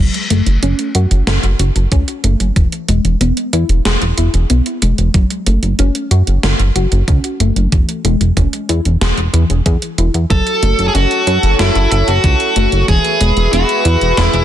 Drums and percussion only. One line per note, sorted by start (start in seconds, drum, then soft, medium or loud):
0.14 closed hi-hat soft
0.30 closed hi-hat medium
0.46 closed hi-hat soft
0.63 closed hi-hat medium
0.79 closed hi-hat soft
0.95 closed hi-hat medium
1.11 closed hi-hat soft
1.27 snare loud
1.27 closed hi-hat medium
1.43 closed hi-hat soft
1.59 closed hi-hat medium
1.76 closed hi-hat soft
1.92 kick loud
1.92 closed hi-hat medium
2.08 closed hi-hat soft
2.24 closed hi-hat loud
2.40 closed hi-hat soft
2.56 kick loud
2.56 closed hi-hat medium
2.72 closed hi-hat soft
2.89 closed hi-hat medium
3.05 closed hi-hat soft
3.21 closed hi-hat medium
3.37 closed hi-hat soft
3.53 closed hi-hat medium
3.69 closed hi-hat soft
3.85 snare loud
3.85 closed hi-hat medium
4.02 closed hi-hat soft
4.18 closed hi-hat medium
4.34 closed hi-hat soft
4.50 closed hi-hat medium
4.66 closed hi-hat soft
4.82 closed hi-hat medium
4.98 closed hi-hat soft
5.14 kick loud
5.14 closed hi-hat medium
5.30 closed hi-hat soft
5.46 closed hi-hat medium
5.63 closed hi-hat soft
5.79 closed hi-hat medium
5.95 closed hi-hat soft
6.11 closed hi-hat medium
6.27 closed hi-hat soft
6.43 snare loud
6.43 closed hi-hat medium
6.60 closed hi-hat soft
6.76 closed hi-hat medium
6.92 closed hi-hat soft
7.08 kick loud
7.08 closed hi-hat medium
7.24 closed hi-hat soft
7.40 closed hi-hat medium
7.56 closed hi-hat soft
7.72 kick loud
7.72 closed hi-hat medium
7.89 closed hi-hat soft
8.05 closed hi-hat medium
8.21 closed hi-hat soft
8.37 kick medium
8.37 closed hi-hat medium
8.53 closed hi-hat soft
8.69 closed hi-hat medium
8.85 closed hi-hat soft
9.01 snare loud
9.01 closed hi-hat medium
9.18 closed hi-hat soft
9.34 closed hi-hat medium
9.50 closed hi-hat soft
9.66 kick medium
9.66 closed hi-hat medium
9.82 closed hi-hat soft
9.98 closed hi-hat medium
10.14 closed hi-hat soft
10.30 kick loud
10.30 closed hi-hat medium
10.47 closed hi-hat soft
10.63 closed hi-hat medium
10.79 closed hi-hat soft
10.95 closed hi-hat medium
11.11 closed hi-hat soft
11.27 closed hi-hat medium
11.43 closed hi-hat soft
11.59 snare loud
11.59 closed hi-hat medium
11.75 closed hi-hat soft
11.92 closed hi-hat medium
12.08 closed hi-hat soft
12.24 kick loud
12.24 closed hi-hat medium
12.40 closed hi-hat soft
12.56 closed hi-hat medium
12.72 closed hi-hat soft
12.88 kick loud
12.88 closed hi-hat medium
13.05 closed hi-hat soft
13.21 closed hi-hat medium
13.37 closed hi-hat soft
13.53 closed hi-hat medium
13.69 closed hi-hat soft
13.85 closed hi-hat medium
14.01 closed hi-hat soft
14.17 snare loud
14.17 closed hi-hat medium
14.34 closed hi-hat soft